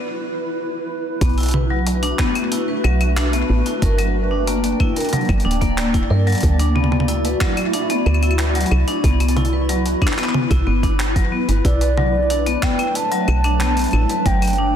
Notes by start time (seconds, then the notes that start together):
Already playing: E4 B4
1.21 B1 A3 B3 D4 F#4 B4, kick, closed hi-hat
1.29 closed hi-hat
1.33 closed hi-hat
1.38 E4, closed hi-hat
1.40 closed hi-hat
1.43 closed hi-hat
1.46 closed hi-hat
1.48 closed hi-hat
1.51 B4, closed hi-hat, mid tom
1.70 F#3
1.87 closed hi-hat
2.03 D4, closed hi-hat
2.19 B3, kick, clap
2.35 B3, closed hi-hat, claves
2.52 E4, closed hi-hat
2.68 B4
2.84 B1 F#3, claves
3.01 closed hi-hat, claves
3.17 D4, clap, closed hi-hat
3.33 B3, closed hi-hat
3.50 A1 B3
3.66 E4, closed hi-hat
3.82 G1 A#3 A#4 D5 G5, kick, closed hi-hat
3.98 F#3, closed hi-hat, claves
4.31 D4
4.47 A#3, closed hi-hat
4.64 A#3, closed hi-hat
4.80 E4, kick, claves
4.96 A#4, closed hi-hat
5.00 closed hi-hat
5.05 closed hi-hat
5.09 F#3, closed hi-hat
5.13 closed hi-hat, mid tom
5.17 closed hi-hat
5.21 closed hi-hat
5.25 closed hi-hat
5.29 G1, kick, closed hi-hat, claves
5.40 closed hi-hat
5.45 D1 D4
5.51 closed hi-hat
5.61 A#3, kick, closed hi-hat
5.78 A#3, clap, closed hi-hat
5.94 E4, kick, closed hi-hat
6.10 G2 A#4
6.27 F#3, closed hi-hat
6.30 closed hi-hat
6.32 closed hi-hat
6.35 closed hi-hat
6.38 closed hi-hat
6.40 D2 A3 E4 F#4, kick, closed hi-hat
6.43 closed hi-hat
6.59 D4, closed hi-hat
6.76 B3, mid tom
6.84 mid tom
6.92 B3, mid tom
7.00 mid tom
7.08 E4, closed hi-hat
7.25 B4, closed hi-hat
7.41 F#3, kick, clap, claves
7.57 closed hi-hat, claves
7.73 D4, closed hi-hat
7.90 B3, closed hi-hat
8.06 D2 B3, claves
8.14 claves
8.23 E4, closed hi-hat, claves
8.31 claves
8.39 B4, clap, closed hi-hat
8.55 F#3, closed hi-hat
8.61 closed hi-hat
8.66 closed hi-hat
8.71 C2, claves
8.88 D4, closed hi-hat
9.04 C2 B3 B4, kick, closed hi-hat
9.20 B3, closed hi-hat, claves
9.28 closed hi-hat
9.36 E4, closed hi-hat, mid tom
9.45 closed hi-hat
9.53 B4
9.69 F#3, closed hi-hat
9.86 closed hi-hat
10.02 D4, kick, claves
10.07 clap
10.13 clap
10.18 B3, clap, closed hi-hat
10.24 clap
10.29 clap
10.34 B3, mid tom
10.51 C2 E4, kick, closed hi-hat, claves
10.67 G1 B3
10.83 D4, kick, closed hi-hat
11.00 clap, closed hi-hat
11.16 F#3, kick, closed hi-hat
11.32 B3
11.48 G1 B4, closed hi-hat
11.65 B1 F#3 A3 D4 E4 D5, kick, closed hi-hat
11.81 B4, closed hi-hat
11.98 F#3, mid tom
12.30 D4, closed hi-hat
12.46 B3, closed hi-hat
12.62 B3 G5, kick, clap, claves
12.79 E4, closed hi-hat, claves
12.95 B4 A5, closed hi-hat
13.12 F#3, closed hi-hat
13.28 B1, claves
13.44 D4, closed hi-hat, claves
13.60 B3, clap, closed hi-hat
13.77 B3, closed hi-hat
13.79 closed hi-hat
13.81 closed hi-hat
13.84 closed hi-hat
13.86 closed hi-hat
13.88 closed hi-hat
13.91 A1 E4, closed hi-hat, claves
14.09 B4, closed hi-hat
14.26 G1 F#3 G5, kick, closed hi-hat
14.42 closed hi-hat, claves
14.45 closed hi-hat
14.47 closed hi-hat
14.50 closed hi-hat
14.53 closed hi-hat
14.56 D4, closed hi-hat